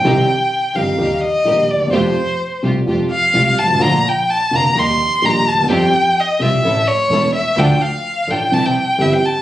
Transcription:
X:1
M:4/4
L:1/16
Q:1/4=128
K:Fmix
V:1 name="Violin"
g6 f4 e4 d2 | c6 z4 f4 a2 | b2 g2 a2 b2 c'4 b2 a2 | g4 e2 =e4 ^c4 e2 |
g2 f4 g2 a g3 =e g a2 |]
V:2 name="String section"
[CEG]2 z4 [CEG]2 [B,EG]2 z2 [B,EG]2 z2 | [A,FG]2 z4 [A,FG]2 [A,FG]2 z2 [A,FG]2 z2 | [B,DF]2 z4 [B,DF]2 [B,EG]2 z2 [B,EG]2 z2 | [CFG]2 z4 [CFG]2 [^C=EA]2 z2 [CEA]2 z2 |
[DFA]2 z4 [DFA]2 [C=EG]2 z2 [CEG]2 z2 |]
V:3 name="Grand piano" clef=bass
[C,,C,E,G,CG]2 z4 [G,,,G,,E,G,CG]2 [E,,E,G,B,G]2 z2 [B,,,B,,E,G,B,G]2 z/2 D,,/2 E,,/2 =E,,/2 | [F,,C,F,G,A,F]2 z4 [C,,C,G,A,F]2 [F,,C,F,G,A,F]2 z2 [C,,C,G,A,F]2 z/2 G,,,/2 _A,,,/2 =A,,,/2 | [B,,,B,,D,F,B,F]2 z4 [F,,,F,,D,F,B,F]2 [E,,E,G,B,G]2 z2 [B,,,B,,E,G,B,G]2 z/2 D,,/2 E,,/2 =E,,/2 | [F,,F,G,CG]2 z4 [C,,C,F,G,CG]2 [A,,,A,,=E,A,^CA]2 z2 [=E,,,=E,,E,A,CA]2 z2 |
[D,,D,F,A,DA]2 z4 [A,,,A,,F,A,DA]2 [C,,C,=E,G,CG]2 z2 [G,,,G,,E,G,CG]2 z2 |]
V:4 name="Double bass" clef=bass
C,,2 z4 G,,,2 E,,2 z2 B,,,2 E,,2 | F,,2 z4 C,,2 F,,2 z2 C,,2 _A,,,2 | B,,,2 z4 F,,,2 E,,2 z2 B,,,2 E,,2 | F,,2 z4 C,,2 A,,,2 z2 =E,,,2 z2 |
D,,2 z4 A,,,2 C,,2 z2 G,,,2 z2 |]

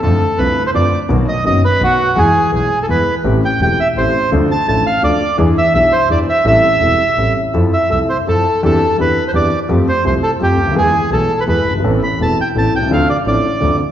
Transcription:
X:1
M:3/4
L:1/16
Q:1/4=168
K:Am
V:1 name="Bandoneon"
A4 B3 c d3 z | z2 ^d2 d2 B2 ^F4 | ^G4 G3 A B3 z | z2 g2 g2 e2 c4 |
z2 a2 a2 f2 d4 | z2 e2 e2 c2 d2 e2 | e8- e2 z2 | z2 e2 e2 c2 A4 |
A4 B3 c d3 z | z2 c2 c2 A2 G4 | ^G4 A3 B B3 z | z2 b2 a2 g2 a2 g2 |
f2 d2 d6 z2 |]
V:2 name="Grand piano" clef=bass
[F,,D,F,A,CF]2 z2 [C,,C,D,A,CF]2 z2 [F,,D,F,A,CF]2 z2 | [B,,,B,,^D,^F,B,^F]2 z2 [^F,,,^F,,D,F,B,F]2 z2 [B,,,B,,D,F,B,F]2 z2 | [E,,E,^G,B,^G]2 z2 [B,,,B,,E,G,B,G]2 z2 [E,,E,G,B,G]2 z2 | [A,,,A,,E,A,CG]2 z2 [E,,,E,,E,A,CG]2 z2 [A,,,A,,E,A,CG]2 z2 |
[D,,D,F,A,DA]2 z2 [A,,,A,,F,A,DA]2 z2 [D,,D,F,A,DA]2 z2 | [E,,E,B,D^G]2 z2 [B,,,B,,E,B,DG]2 z2 [E,,E,B,DG]2 z2 | [A,,,A,,G,CEA]2 z2 [E,,,E,,G,CEA]2 z2 [A,,,A,,G,CEA]2 z2 | [F,,F,CEA]2 z2 [C,,C,F,CEA]2 z2 [F,,F,CEA]2 z2 |
[E,,E,CDG]2 z2 [E,,E,CDG]2 z2 [E,,E,CDG]2 z2 | [F,,F,A,CG]2 z2 [C,,C,F,A,CG]2 z2 [F,,F,A,CG]2 z/2 ^C,,/2 D,,/2 ^D,,/2 | [E,,E,^G,B,^G]2 z2 [B,,,B,,E,G,B,G]2 z2 [E,,E,G,B,G]2 z/2 ^F,,,/2 =G,,,/2 ^G,,,/2 | [A,,,A,,E,B,CA]2 z2 [E,,,E,,E,B,CA]2 z2 [A,,,A,,E,B,CA]2 z/2 B,,,/2 C,,/2 ^C,,/2 |
[D,,D,F,CDA]2 z2 [A,,,A,,F,CDA]2 z2 [D,,D,F,CDA]2 z2 |]
V:3 name="Double bass" clef=bass
F,,2 z2 C,,2 z2 F,,2 z2 | B,,,2 z2 ^F,,,2 z2 B,,,2 z2 | E,,2 z2 B,,,2 z2 E,,2 z2 | A,,,2 z2 E,,,2 z2 A,,,2 z2 |
D,,2 z2 A,,,2 z2 D,,2 z2 | E,,2 z2 B,,,2 z2 E,,2 z2 | A,,,2 z2 E,,,2 z2 A,,,2 z2 | F,,2 z2 C,,2 z2 F,,2 z2 |
E,,2 z2 E,,2 z2 E,,2 z2 | F,,2 z2 C,,2 z2 F,,2 D,,2 | E,,2 z2 B,,,2 z2 E,,2 G,,,2 | A,,,2 z2 E,,,2 z2 A,,,2 C,,2 |
D,,2 z2 A,,,2 z2 D,,2 z2 |]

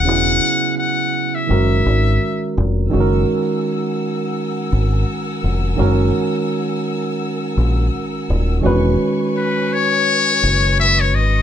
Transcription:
X:1
M:4/4
L:1/16
Q:"Swing 16ths" 1/4=84
K:F#dor
V:1 name="String section"
z16 | [^Afge']16- | [^Afge']16 | [Bcgc']16 |]
V:2 name="Muted trumpet"
f4 f3 e6- e z2 | z16 | z16 | z4 B2 c6 e c d2 |]
V:3 name="Tine electric piano"
[C,F,B,EG]8 [D,G,CF^A]8 | [D,G,CFG^A]16 | [D,G,CF^A]16 | [D,G,CFB]16 |]
V:4 name="Fingered electric bass" clef=bass
E,,,2 z6 F,,,2 G,,,2 z2 =F,,,2 | F,,,2 z8 G,,,2 z2 =F,,,2 | F,,,2 z8 ^A,,,2 z2 D,,,2 | E,,,2 z8 F,,,4 G,,,2 |]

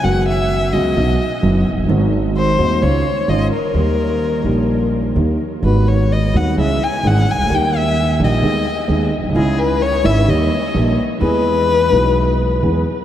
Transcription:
X:1
M:4/4
L:1/16
Q:1/4=129
K:G#m
V:1 name="Violin"
f2 e4 d8 z2 | z4 ^B4 c4 d2 A2- | A8- A2 z6 | B2 c2 d2 f2 e2 g2 f2 g2 |
=g2 e4 d8 z2 | G2 B2 c2 e2 d6 z2 | B12 z4 |]
V:2 name="Grand piano" clef=bass
[F,,C,F,B,F]6 [C,,C,F,B,F]2 [B,,,B,,D,F,B,F]2 z2 [F,,,F,,D,F,B,F]2 z/2 ^E,,,/2 F,,,/2 =G,,,/2 | [G,,,G,,D,G,^B,F]6 [D,,,D,,D,G,B,F]2 [C,,C,D,G,C^E]2 z2 [G,,,G,,D,G,CE]2 z2 | [D,,D,=G,A,=G]6 [A,,,A,,D,G,A,G]6 [D,,D,G,A,G]2 z2 | [G,,,G,,D,G,B,F]6 [D,,,D,,D,G,B,F]2 [C,,C,E,G,CG]2 z2 [G,,,G,,E,G,CG]2 z/2 ^B,,,/2 C,,/2 =D,,/2 |
[D,,D,=G,A,=G]6 [A,,,A,,D,G,A,G]2 [D,,D,^G,B,^G]2 z2 [D,,D,G,B,G]2 z/2 A,,,/2 B,,,/2 ^B,,,/2 | [C,,C,G,CDE]6 [G,,,G,,D,G,CE]2 [D,,D,=G,A,=G]2 z2 [A,,,A,,D,G,A,G]2 z2 | [E,,E,G,B,G]6 [B,,,B,,E,G,B,G]6 [E,,E,G,B,G]2 z2 |]
V:3 name="Upright bass" clef=bass
F,,,4- F,,,3/2 z/2 C,,3/2 z/2 B,,,3/2 z2 z/2 F,,,3/2 z ^E,,,/2 F,,,/2 =G,,,/2 | G,,,4- G,,,3/2 z/2 D,,3/2 z/2 C,,3/2 z2 z/2 G,,,3/2 z2 z/2 | D,,4- D,,3/2 z/2 A,,,4- A,,,3/2 z/2 D,,3/2 z2 z/2 | G,,,4- G,,,3/2 z/2 D,,3/2 z/2 C,,3/2 z2 z/2 G,,,3/2 z ^B,,,/2 C,,/2 =D,,/2 |
D,,4- D,,3/2 z/2 A,,,3/2 z/2 D,,3/2 z2 z/2 D,,3/2 z A,,,/2 B,,,/2 ^B,,,/2 | C,,4- C,,3/2 z/2 G,,,3/2 z/2 D,,3/2 z2 z/2 A,,,3/2 z2 z/2 | E,,4- E,,3/2 z/2 B,,,4- B,,,3/2 z/2 E,,3/2 z2 z/2 |]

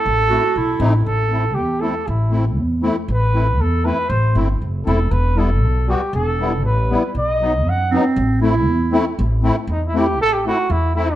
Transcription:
X:1
M:2/4
L:1/16
Q:1/4=118
K:none
V:1 name="Cornet"
A6 z2 | A4 G2 A2 | E2 z6 | B4 A2 B2 |
c2 z4 A2 | B2 A4 G2 | A4 B4 | ^d4 ^f2 z2 |
z8 | z4 ^D E G2 | A G ^F2 E2 E2 |]
V:2 name="Clarinet"
z2 ^F2 E4 | z8 | z8 | z8 |
z8 | z8 | z8 | z6 C2- |
C2 E6 | z8 | z8 |]
V:3 name="Accordion"
z2 [A,CE] z3 [A,C^D] z | z2 [A,CE] z3 [A,CE] z | z2 [A,CE] z3 [A,CE] z | z2 [A,CE] z3 [A,CE] z |
z2 [A,CE] z3 [A,CE] z | z2 [G,B,E] z3 [G,B,^F] z | z2 [G,B,E] z3 [G,B,E] z | z2 [^F,B,^D] z3 [F,B,D] z |
z2 [A,CE] z3 [A,CE] z | z2 [A,CE] z3 [A,CE] z | z2 [A,CE] z3 [A,CE] z |]
V:4 name="Upright bass" clef=bass
A,,,4 B,,,2 A,,,2 | A,,,4 E,,4 | A,,,4 E,,4 | A,,,4 E,,4 |
A,,,2 G,,,2 ^F,,,2 E,,,2 | E,,,4 B,,,4 | E,,,4 A,,,4 | B,,,4 ^F,,4 |
A,,,4 E,,4 | A,,,4 E,,4 | A,,,4 E,,4 |]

